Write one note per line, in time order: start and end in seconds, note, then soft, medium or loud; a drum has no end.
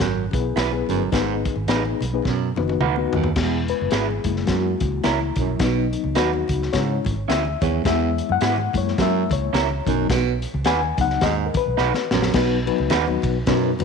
0.00 0.26 G#1 medium
0.00 0.26 F#2 medium
0.00 kick medium
0.00 snare medium
0.31 0.51 B1 medium
0.31 0.59 B3 medium
0.31 0.59 E4 medium
0.31 0.59 G#4 medium
0.31 0.59 B4 medium
0.31 kick loud
0.31 closed hi-hat medium
0.31 high conga medium
0.56 0.82 B1 medium
0.56 0.70 E4 medium
0.56 0.70 G#4 medium
0.56 0.71 B4 medium
0.56 snare loud
0.56 closed hi-hat medium
0.56 muted conga soft
0.71 1.02 B3 medium
0.71 1.02 E4 medium
0.71 1.02 G#4 medium
0.71 1.03 B4 loud
0.71 high conga medium
0.88 1.07 G1 loud
0.88 1.07 F#2 medium
0.88 closed hi-hat medium
0.88 low conga medium
1.12 1.47 G#1 loud
1.12 1.38 G#2 medium
1.12 1.55 B3 medium
1.12 1.55 D#4 medium
1.12 1.55 G#4 medium
1.12 1.55 B4 medium
1.12 kick loud
1.12 snare loud
1.12 closed hi-hat medium
1.12 muted conga soft
1.12 low conga medium
1.45 kick loud
1.45 closed hi-hat medium
1.56 1.65 G#1 medium
1.56 high conga medium
1.67 1.93 A1 loud
1.67 2.03 B3 medium
1.67 1.82 D#4 medium
1.67 2.03 D#4 medium
1.67 1.82 G#4 medium
1.67 2.03 G#4 medium
1.67 1.83 B4 medium
1.67 2.04 B4 medium
1.67 snare loud
1.67 closed hi-hat medium
1.67 muted conga soft
1.85 high conga medium
2.01 2.19 B1 loud
2.01 closed hi-hat medium
2.01 muted conga soft
2.01 low conga medium
2.13 2.25 B3 medium
2.13 2.25 D#4 medium
2.13 2.25 G#4 medium
2.13 2.26 B4 medium
2.25 2.51 F#2 medium
2.25 2.51 B2 loud
2.25 kick medium
2.25 snare soft
2.56 2.75 F#1 medium
2.56 2.83 B3 medium
2.56 2.83 D#4 medium
2.56 2.84 F#4 medium
2.56 2.84 B4 medium
2.56 high tom medium
2.56 muted conga soft
2.56 high conga medium
2.68 high tom medium
2.68 high conga soft
2.80 3.06 D2 medium
2.80 2.94 D#4 medium
2.80 2.95 F#4 medium
2.80 2.95 B4 medium
2.80 mid tom medium
2.96 3.27 B3 medium
2.96 3.27 D#4 medium
2.96 3.27 F#4 medium
2.96 3.28 B4 loud
2.96 high conga medium
3.13 3.32 D#2 loud
3.13 3.33 D#2 medium
3.13 floor tom medium
3.13 muted conga soft
3.13 low conga medium
3.23 floor tom medium
3.36 3.71 E1 loud
3.36 3.64 E2 medium
3.36 4.22 G#3 medium
3.36 4.22 B3 soft
3.36 4.22 E4 medium
3.36 kick loud
3.36 snare loud
3.36 crash medium
3.36 muted conga soft
3.36 low conga medium
3.68 3.94 B4 loud
3.68 closed hi-hat medium
3.68 muted conga soft
3.81 3.90 F#1 medium
3.81 high conga medium
3.91 4.18 G#1 medium
3.91 4.06 E4 medium
3.91 4.50 G#4 medium
3.91 4.06 G#4 medium
3.91 4.07 B4 medium
3.91 snare loud
3.91 closed hi-hat medium
4.11 high conga medium
4.24 4.43 F#1 medium
4.24 5.34 G#3 medium
4.24 5.34 A#3 soft
4.24 5.03 E4 medium
4.24 kick medium
4.24 closed hi-hat medium
4.24 low conga medium
4.36 snare soft
4.47 4.74 F#2 loud
4.47 4.75 F#2 medium
4.47 5.01 F#4 medium
4.47 kick medium
4.47 snare medium
4.47 closed hi-hat medium
4.80 5.00 C#2 medium
4.80 kick medium
4.80 closed hi-hat medium
4.80 muted conga soft
4.80 high conga medium
4.92 high conga soft
5.03 5.31 C#2 medium
5.03 5.18 C#4 medium
5.03 5.62 E4 medium
5.03 5.18 E4 medium
5.03 5.19 A#4 medium
5.03 snare loud
5.03 closed hi-hat medium
5.19 high conga medium
5.36 5.55 B1 loud
5.36 5.57 F#2 medium
5.36 kick medium
5.36 closed hi-hat medium
5.36 low conga medium
5.59 5.95 B1 medium
5.59 5.88 B2 medium
5.59 6.69 F#3 medium
5.59 6.69 B3 medium
5.59 6.70 D#4 medium
5.59 kick loud
5.59 snare medium
5.59 closed hi-hat medium
5.59 muted conga soft
5.59 low conga medium
5.93 closed hi-hat medium
5.93 muted conga soft
6.04 6.14 C#2 loud
6.04 high conga medium
6.15 6.42 D#2 medium
6.15 6.30 D#4 medium
6.15 6.30 F#4 medium
6.15 6.74 F#4 medium
6.15 6.31 B4 medium
6.15 snare loud
6.15 closed hi-hat medium
6.33 high conga medium
6.48 6.68 C#2 medium
6.48 kick medium
6.48 closed hi-hat medium
6.48 low conga medium
6.63 snare soft
6.73 6.99 G#2 medium
6.73 6.99 C#3 medium
6.73 7.13 G#3 medium
6.73 7.13 C#4 soft
6.73 7.14 E4 medium
6.73 7.03 C#5 loud
6.73 kick medium
6.73 snare medium
6.73 closed hi-hat medium
7.05 7.24 G#1 medium
7.05 kick medium
7.05 closed hi-hat medium
7.05 muted conga soft
7.05 high conga medium
7.16 high conga medium
7.28 7.55 D2 medium
7.28 7.42 C#4 medium
7.28 7.43 E4 medium
7.28 7.43 G#4 medium
7.28 7.63 E5 medium
7.28 snare loud
7.28 closed hi-hat medium
7.45 high conga medium
7.62 7.80 D#2 loud
7.62 7.81 E2 medium
7.62 7.86 C#5 medium
7.62 kick loud
7.62 closed hi-hat medium
7.62 muted conga soft
7.62 low conga medium
7.84 8.11 E2 loud
7.84 8.20 E2 loud
7.84 8.69 G#3 medium
7.84 8.70 B3 medium
7.84 8.70 E4 medium
7.84 8.32 E5 loud
7.84 kick loud
7.84 snare loud
7.84 closed hi-hat medium
7.84 low conga medium
8.18 closed hi-hat medium
8.18 muted conga soft
8.29 8.39 F#2 medium
8.29 8.77 F#5 loud
8.29 high conga medium
8.41 8.67 G#2 loud
8.41 8.55 B3 medium
8.41 8.55 E4 loud
8.41 8.55 G#4 loud
8.41 snare loud
8.41 closed hi-hat medium
8.58 high conga medium
8.73 8.93 F#2 loud
8.73 9.50 G#3 medium
8.73 9.50 A#3 medium
8.73 9.50 E4 medium
8.73 kick medium
8.73 closed hi-hat medium
8.73 low conga medium
8.77 8.98 C#5 medium
8.88 snare soft
8.98 9.24 F#2 medium
8.98 9.24 F#3 medium
8.98 9.33 E5 loud
8.98 kick medium
8.98 snare medium
8.98 closed hi-hat medium
9.30 9.49 C#2 medium
9.30 10.07 C#5 loud
9.30 kick loud
9.30 closed hi-hat medium
9.30 muted conga soft
9.30 high conga medium
9.41 high conga soft
9.53 9.79 C#2 medium
9.53 9.67 C#4 medium
9.53 9.67 E4 medium
9.53 9.68 A#4 medium
9.53 snare loud
9.53 closed hi-hat medium
9.53 muted conga soft
9.69 high conga medium
9.87 10.05 B1 loud
9.87 10.05 F#2 medium
9.87 10.21 F#3 medium
9.87 10.21 B3 medium
9.87 10.22 D#4 medium
9.87 kick medium
9.87 closed hi-hat medium
9.87 low conga medium
10.09 10.44 B1 loud
10.09 10.36 B2 medium
10.09 kick loud
10.09 snare loud
10.09 closed hi-hat loud
10.09 muted conga soft
10.09 low conga medium
10.42 closed hi-hat medium
10.54 10.63 C#2 loud
10.54 high conga medium
10.64 10.92 D#2 medium
10.64 10.79 D#4 medium
10.64 10.80 F#4 medium
10.64 10.80 B4 loud
10.64 10.97 G#5 loud
10.64 snare loud
10.64 closed hi-hat medium
10.83 high conga medium
10.97 11.17 C#2 loud
10.97 11.20 F#3 medium
10.97 11.20 B3 soft
10.97 11.20 D#4 medium
10.97 11.24 F#5 loud
10.97 kick medium
10.97 closed hi-hat medium
10.97 muted conga soft
10.97 low conga medium
11.10 snare soft
11.21 11.48 D#2 medium
11.21 11.49 G#2 medium
11.21 11.34 D#5 medium
11.21 kick medium
11.21 snare loud
11.21 closed hi-hat medium
11.46 11.55 A#4 medium
11.54 12.32 B4 loud
11.54 muted fingered electric bass stroke soft
11.54 kick loud
11.54 closed hi-hat medium
11.54 high conga medium
11.66 11.76 B1 medium
11.66 high conga medium
11.77 11.92 B1 loud
11.77 11.91 D#4 medium
11.77 11.92 F#4 medium
11.77 11.92 B4 loud
11.77 snare medium
11.77 muted conga soft
11.94 snare medium
11.94 high conga medium
12.11 12.30 A#1 loud
12.11 12.30 F#2 medium
12.11 snare loud
12.11 muted conga soft
12.11 low conga medium
12.22 snare medium
12.33 12.69 B1 loud
12.33 12.61 B2 medium
12.33 12.57 F#3 medium
12.33 12.58 B3 medium
12.33 12.58 D#4 medium
12.33 12.58 F#4 medium
12.33 12.58 B4 loud
12.33 kick loud
12.33 snare loud
12.33 crash loud
12.33 low conga medium
12.66 12.92 F#3 loud
12.66 12.93 B3 medium
12.66 12.93 D#4 loud
12.66 12.93 F#4 medium
12.66 12.93 B4 loud
12.66 ride medium
12.66 muted conga soft
12.78 12.89 C#2 medium
12.78 high conga medium
12.90 13.16 D#2 medium
12.90 13.04 D#4 medium
12.90 13.05 F#4 medium
12.90 13.05 B4 loud
12.90 snare loud
12.90 ride medium
12.90 muted conga soft
13.07 13.37 F#3 medium
13.07 13.37 B3 medium
13.07 13.37 D#4 medium
13.07 13.37 F#4 medium
13.07 13.37 B4 medium
13.07 high conga medium
13.22 13.42 B1 medium
13.22 kick medium
13.22 ride medium
13.22 muted conga soft
13.46 13.73 F#2 medium
13.46 13.73 B2 medium
13.46 13.71 F#3 medium
13.46 13.71 B3 medium
13.46 13.71 D#4 medium
13.46 13.71 F#4 medium
13.46 13.71 B4 loud
13.46 kick medium
13.46 snare loud
13.46 ride medium
13.46 muted conga soft
13.79 13.84 F#1 medium
13.79 13.84 F#3 medium
13.79 13.84 B3 medium
13.79 13.84 D#4 medium
13.79 13.84 F#4 medium
13.79 ride medium
13.79 muted conga soft
13.79 high conga medium